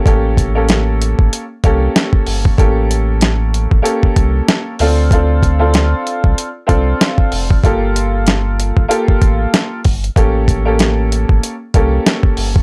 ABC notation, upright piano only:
X:1
M:4/4
L:1/16
Q:"Swing 16ths" 1/4=95
K:Aphr
V:1 name="Upright piano"
[B,^CGA]3 [B,CGA]6 z [B,CGA]6 | [B,^CGA]6- [B,CGA] z [B,CGA]6 [=CDFA]2 | [CDFA]3 [CDFA]6 z [CDFA]6 | [B,FGA]6- [B,FGA] z [B,FGA]6 z2 |
[B,^CGA]3 [B,CGA]6 z [B,CGA]6 |]